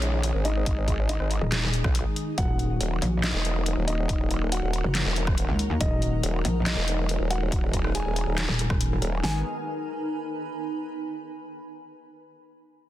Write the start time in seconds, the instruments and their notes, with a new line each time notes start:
Already playing: wobble bass A#1, analog synth pad D#3 G#3 D#4 G#4, grand piano C#4 C#5, ambient pad D#4 G#4 G#5 D#6
0.02 closed hi-hat
0.23 closed hi-hat
0.34 wobble bass G#1
0.45 grand piano D#4 D#5, closed hi-hat
0.66 kick, closed hi-hat
0.88 kick, closed hi-hat
1.09 grand piano D#4 D#5, closed hi-hat
1.20 wobble bass G#1, cross-stick
1.31 closed hi-hat
1.41 wobble bass D#1
1.52 snare, clap, closed hi-hat
1.73 closed hi-hat
1.84 wobble bass B1, kick, cross-stick
1.95 closed hi-hat
2.16 closed hi-hat
2.38 wobble bass D#1, analog synth pad F#3 A#3 F#4, ambient pad D#4, grand piano F#4 F#5, kick, closed hi-hat
2.59 closed hi-hat
2.73 ambient pad A#4
2.81 wobble bass D#1, closed hi-hat
3.02 wobble bass A#1, closed hi-hat
3.08 ambient pad F#5
3.23 grand piano D#4 D#5, ambient pad A#5, snare, clap, closed hi-hat
3.34 wobble bass E1
3.45 closed hi-hat
3.66 closed hi-hat
3.77 wobble bass D#1
3.88 grand piano D#4 D#5, closed hi-hat
4.09 kick, closed hi-hat
4.31 closed hi-hat
4.52 grand piano F#4 F#5, closed hi-hat
4.63 wobble bass D#1
4.73 closed hi-hat
4.84 wobble bass F#1
4.95 snare, clap, closed hi-hat
5.06 wobble bass E1
5.16 closed hi-hat
5.27 kick, cross-stick
5.38 closed hi-hat
5.49 wobble bass C#2
5.59 closed hi-hat
5.70 wobble bass D#2
5.81 wobble bass D#1, analog synth pad G#3, grand piano D#4 D#5, kick, closed hi-hat
5.94 ambient pad G#5
6.02 closed hi-hat
6.23 wobble bass D#1, closed hi-hat
6.45 wobble bass A#1, closed hi-hat
6.66 grand piano D#4 D#5, snare, clap, closed hi-hat
6.77 wobble bass E1
6.88 closed hi-hat
7.09 closed hi-hat
7.20 wobble bass D#1
7.31 grand piano F#4 F#5, closed hi-hat
7.52 kick, closed hi-hat
7.73 kick, closed hi-hat
7.84 cross-stick
7.95 grand piano G#4 G#5, closed hi-hat
8.06 wobble bass D#1
8.16 closed hi-hat
8.27 wobble bass D#1
8.38 snare, clap, closed hi-hat
8.49 wobble bass D#1
8.59 closed hi-hat
8.70 wobble bass D#1, kick, cross-stick
8.81 closed hi-hat
9.02 wobble bass D#1, closed hi-hat
9.23 wobble bass G#1, analog synth pad D#3 G#3 B3 G#4, ambient pad D#4, grand piano G#5, snare
9.30 ambient pad B4
9.36 ambient pad G#5
9.43 ambient pad B5